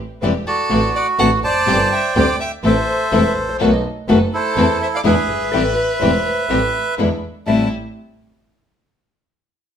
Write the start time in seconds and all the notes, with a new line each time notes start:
0.22 E1 E3 G3 A3 C4 E4 G4
0.47 F#4 A4 D5
0.69 A1 D3 A3 C4 D4 F#4
0.96 D5 F#5
1.18 A1 D3 A3 C4 D4 F#4 F#5 A5
1.42 F1 C5 D5 A5
1.66 G1 C3 G3 C4 D4 G4
1.92 E5 G5
2.15 D2 C3 G3 C4 D4 G4 D5 G5
2.40 E5 G5
2.62 A1 E3 A3 C4 E4 A4 C5 E5
2.67 C5
3.11 E1 E3 A3 C4 E4 A4
3.26 B4
3.36 A1
3.49 C5
3.59 B1 B2 D#3 A3 B3 D#4 F#4 A4 C#5
3.73 D#5
4.08 F#1 B2 D#3 A3 B3 D#4 F#4 A4
4.34 E4 A4 C5
4.56 E2 E3 A3 C4 E4 A4
4.82 C5 E5
4.94 D5 F5
5.04 E2 B2 D3 G#3 B3 D4 E4 G#4 B4 E5
5.08 B4
5.28 G1
5.52 A1 E3 G3 A3 C4 E4 G4 A4
5.75 B4
6.00 E1 E3 G3 A3 C4 E4 G4 C5
6.49 A1 E3 G3 A3 C4 E4 G4 E5
6.98 E2 B2 D3 G#3 B3 D4 E4
7.46 A1 A2 E3 G3 A3 C4 E4 G4 E5 A5